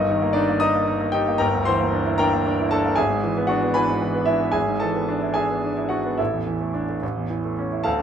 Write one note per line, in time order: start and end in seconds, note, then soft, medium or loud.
0.00 1.37 G1 medium
0.00 0.18 G2 medium
0.00 0.32 D#4 medium
0.00 0.32 A#4 medium
0.00 0.35 D#5 medium
0.10 0.31 D#3 medium
0.22 0.44 A#3 medium
0.33 0.59 D4 medium
0.33 0.57 D#4 medium
0.33 0.61 D5 medium
0.49 0.70 A#3 medium
0.60 0.83 D#4 medium
0.60 1.10 D#5 medium
0.60 1.10 A#5 medium
0.60 1.13 D#6 loud
0.76 0.96 A#3 soft
0.88 1.09 D#4 medium
1.01 1.22 A#3 medium
1.12 1.35 D#4 medium
1.12 1.38 G4 medium
1.12 1.38 G5 medium
1.28 1.41 A#3 medium
1.38 2.93 G1 medium
1.38 1.64 A#4 medium
1.38 1.64 G5 medium
1.38 1.65 A#5 medium
1.54 1.75 D2 medium
1.65 1.88 E3 medium
1.65 2.15 C5 medium
1.65 2.18 C6 medium
1.80 2.01 A#3 medium
1.93 2.14 D4 medium
2.06 2.27 E4 medium
2.18 2.41 D4 medium
2.18 2.68 A#4 medium
2.18 2.68 G5 medium
2.18 2.71 A#5 medium
2.33 2.54 A#3 medium
2.47 2.67 D4 medium
2.60 2.80 E4 medium
2.71 2.93 D4 medium
2.71 2.95 A4 medium
2.71 2.97 A5 medium
2.86 2.98 A#3 medium
2.96 4.52 G#1 medium
2.96 3.46 G#4 medium
2.96 3.46 E5 medium
2.96 3.49 G#5 medium
3.10 3.31 G#2 medium
3.24 3.44 E3 medium
3.37 3.58 B3 medium
3.47 3.71 D4 medium
3.47 3.73 F#4 medium
3.47 3.75 F#5 medium
3.62 3.84 B3 medium
3.74 3.97 E3 medium
3.74 4.24 B4 medium
3.74 4.24 G#5 medium
3.74 4.28 B5 medium
3.88 4.10 G#2 soft
4.02 4.23 E3 medium
4.15 4.36 B3 medium
4.26 4.50 D4 medium
4.26 4.52 E4 medium
4.26 4.51 E5 medium
4.40 4.55 B3 medium
4.52 6.14 G#1 medium
4.52 4.79 G#4 medium
4.52 4.79 E5 medium
4.52 4.80 G#5 medium
4.68 4.90 G#2 soft
4.80 5.04 E3 medium
4.80 5.32 A4 medium
4.80 5.35 A5 medium
4.96 5.17 B3 soft
5.08 5.31 D4 medium
5.22 5.44 E4 soft
5.34 5.58 D4 soft
5.34 5.87 G#4 medium
5.34 5.87 E5 medium
5.34 5.90 G#5 medium
5.50 5.72 B3 soft
5.64 5.86 D4 soft
5.77 5.99 E4 soft
5.89 6.13 D4 soft
5.89 6.16 F#4 medium
5.89 6.18 F#5 medium
6.05 6.19 B3 soft
6.18 7.00 A1 medium
6.18 6.98 E4 soft
6.18 6.98 A4 soft
6.18 7.02 E5 medium
6.33 6.55 E2 soft
6.47 6.69 E3 soft
6.61 6.83 A3 soft
6.74 6.96 D4 soft
6.89 7.02 A3 soft
7.03 7.83 A1 medium
7.17 7.39 E2 soft
7.30 7.53 E3 soft
7.45 7.67 A3 soft
7.59 7.80 C#4 soft
7.72 7.86 E4 soft
7.84 8.02 D2 medium
7.84 8.02 A4 medium
7.84 8.02 F5 medium
7.84 8.02 A5 medium